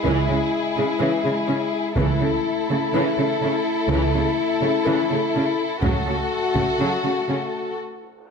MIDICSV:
0, 0, Header, 1, 9, 480
1, 0, Start_track
1, 0, Tempo, 482703
1, 41, Time_signature, 4, 2, 24, 8
1, 6281, Tempo, 491400
1, 8223, End_track
2, 0, Start_track
2, 0, Title_t, "Violin section"
2, 0, Program_c, 0, 48
2, 0, Note_on_c, 0, 68, 41
2, 1925, Note_off_c, 0, 68, 0
2, 1968, Note_on_c, 0, 69, 51
2, 5762, Note_off_c, 0, 69, 0
2, 5792, Note_on_c, 0, 69, 52
2, 7670, Note_off_c, 0, 69, 0
2, 8223, End_track
3, 0, Start_track
3, 0, Title_t, "Violin section"
3, 0, Program_c, 1, 48
3, 0, Note_on_c, 1, 64, 41
3, 1913, Note_off_c, 1, 64, 0
3, 1958, Note_on_c, 1, 64, 42
3, 5758, Note_off_c, 1, 64, 0
3, 5792, Note_on_c, 1, 66, 44
3, 7708, Note_off_c, 1, 66, 0
3, 8223, End_track
4, 0, Start_track
4, 0, Title_t, "French horn section"
4, 0, Program_c, 2, 60
4, 0, Note_on_c, 2, 56, 43
4, 0, Note_on_c, 2, 64, 38
4, 1916, Note_off_c, 2, 64, 0
4, 1917, Note_off_c, 2, 56, 0
4, 1940, Note_on_c, 2, 64, 48
4, 1943, Note_on_c, 2, 57, 52
4, 5617, Note_off_c, 2, 57, 0
4, 5617, Note_off_c, 2, 64, 0
4, 5786, Note_on_c, 2, 66, 51
4, 5799, Note_on_c, 2, 57, 45
4, 7667, Note_off_c, 2, 66, 0
4, 7673, Note_off_c, 2, 57, 0
4, 8223, End_track
5, 0, Start_track
5, 0, Title_t, "Viola section"
5, 0, Program_c, 3, 48
5, 39, Note_on_c, 3, 52, 46
5, 264, Note_off_c, 3, 52, 0
5, 289, Note_on_c, 3, 56, 31
5, 369, Note_off_c, 3, 56, 0
5, 761, Note_on_c, 3, 56, 35
5, 840, Note_off_c, 3, 56, 0
5, 993, Note_on_c, 3, 52, 39
5, 1220, Note_off_c, 3, 52, 0
5, 1241, Note_on_c, 3, 56, 29
5, 1321, Note_off_c, 3, 56, 0
5, 1476, Note_on_c, 3, 61, 42
5, 1556, Note_off_c, 3, 61, 0
5, 1957, Note_on_c, 3, 52, 45
5, 2180, Note_off_c, 3, 52, 0
5, 2203, Note_on_c, 3, 57, 35
5, 2283, Note_off_c, 3, 57, 0
5, 2678, Note_on_c, 3, 57, 37
5, 2758, Note_off_c, 3, 57, 0
5, 2927, Note_on_c, 3, 52, 51
5, 3145, Note_off_c, 3, 52, 0
5, 3176, Note_on_c, 3, 57, 33
5, 3256, Note_off_c, 3, 57, 0
5, 3426, Note_on_c, 3, 61, 39
5, 3505, Note_off_c, 3, 61, 0
5, 3889, Note_on_c, 3, 52, 48
5, 4106, Note_off_c, 3, 52, 0
5, 4131, Note_on_c, 3, 57, 40
5, 4211, Note_off_c, 3, 57, 0
5, 4607, Note_on_c, 3, 57, 36
5, 4687, Note_off_c, 3, 57, 0
5, 4838, Note_on_c, 3, 52, 49
5, 5061, Note_off_c, 3, 52, 0
5, 5086, Note_on_c, 3, 57, 38
5, 5166, Note_off_c, 3, 57, 0
5, 5323, Note_on_c, 3, 61, 33
5, 5403, Note_off_c, 3, 61, 0
5, 5783, Note_on_c, 3, 54, 48
5, 6013, Note_off_c, 3, 54, 0
5, 6034, Note_on_c, 3, 57, 34
5, 6113, Note_off_c, 3, 57, 0
5, 6509, Note_on_c, 3, 57, 41
5, 6587, Note_off_c, 3, 57, 0
5, 6759, Note_on_c, 3, 54, 40
5, 6978, Note_off_c, 3, 54, 0
5, 6995, Note_on_c, 3, 57, 32
5, 7073, Note_off_c, 3, 57, 0
5, 7236, Note_on_c, 3, 61, 32
5, 7315, Note_off_c, 3, 61, 0
5, 8223, End_track
6, 0, Start_track
6, 0, Title_t, "Cello section"
6, 0, Program_c, 4, 48
6, 47, Note_on_c, 4, 49, 44
6, 127, Note_off_c, 4, 49, 0
6, 292, Note_on_c, 4, 49, 37
6, 371, Note_off_c, 4, 49, 0
6, 767, Note_on_c, 4, 49, 36
6, 846, Note_off_c, 4, 49, 0
6, 1001, Note_on_c, 4, 49, 48
6, 1080, Note_off_c, 4, 49, 0
6, 1244, Note_on_c, 4, 49, 34
6, 1323, Note_off_c, 4, 49, 0
6, 1483, Note_on_c, 4, 49, 35
6, 1562, Note_off_c, 4, 49, 0
6, 1958, Note_on_c, 4, 49, 49
6, 2038, Note_off_c, 4, 49, 0
6, 2201, Note_on_c, 4, 49, 41
6, 2281, Note_off_c, 4, 49, 0
6, 2682, Note_on_c, 4, 49, 41
6, 2762, Note_off_c, 4, 49, 0
6, 2920, Note_on_c, 4, 49, 58
6, 3000, Note_off_c, 4, 49, 0
6, 3160, Note_on_c, 4, 49, 38
6, 3239, Note_off_c, 4, 49, 0
6, 3405, Note_on_c, 4, 49, 37
6, 3485, Note_off_c, 4, 49, 0
6, 3870, Note_on_c, 4, 49, 51
6, 3950, Note_off_c, 4, 49, 0
6, 4119, Note_on_c, 4, 49, 39
6, 4199, Note_off_c, 4, 49, 0
6, 4588, Note_on_c, 4, 49, 39
6, 4667, Note_off_c, 4, 49, 0
6, 4841, Note_on_c, 4, 49, 52
6, 4921, Note_off_c, 4, 49, 0
6, 5072, Note_on_c, 4, 49, 36
6, 5151, Note_off_c, 4, 49, 0
6, 5322, Note_on_c, 4, 49, 35
6, 5402, Note_off_c, 4, 49, 0
6, 5784, Note_on_c, 4, 49, 55
6, 5864, Note_off_c, 4, 49, 0
6, 6031, Note_on_c, 4, 49, 38
6, 6111, Note_off_c, 4, 49, 0
6, 6510, Note_on_c, 4, 49, 38
6, 6589, Note_off_c, 4, 49, 0
6, 6744, Note_on_c, 4, 49, 47
6, 6822, Note_off_c, 4, 49, 0
6, 6984, Note_on_c, 4, 49, 33
6, 7062, Note_off_c, 4, 49, 0
6, 7225, Note_on_c, 4, 49, 34
6, 7303, Note_off_c, 4, 49, 0
6, 8223, End_track
7, 0, Start_track
7, 0, Title_t, "Double bass section"
7, 0, Program_c, 5, 48
7, 40, Note_on_c, 5, 37, 43
7, 265, Note_off_c, 5, 37, 0
7, 1964, Note_on_c, 5, 37, 52
7, 2184, Note_off_c, 5, 37, 0
7, 3866, Note_on_c, 5, 37, 54
7, 4093, Note_off_c, 5, 37, 0
7, 5788, Note_on_c, 5, 37, 50
7, 6016, Note_off_c, 5, 37, 0
7, 8223, End_track
8, 0, Start_track
8, 0, Title_t, "Cymbal swell"
8, 0, Program_c, 6, 119
8, 7711, Note_on_c, 6, 60, 37
8, 8223, Note_off_c, 6, 60, 0
8, 8223, End_track
9, 0, Start_track
9, 0, Title_t, "Taiko and cinematic ensemble drums"
9, 1954, Note_on_c, 9, 41, 48
9, 2053, Note_off_c, 9, 41, 0
9, 5791, Note_on_c, 9, 41, 50
9, 5891, Note_off_c, 9, 41, 0
9, 6506, Note_on_c, 9, 41, 28
9, 6603, Note_off_c, 9, 41, 0
9, 8223, End_track
0, 0, End_of_file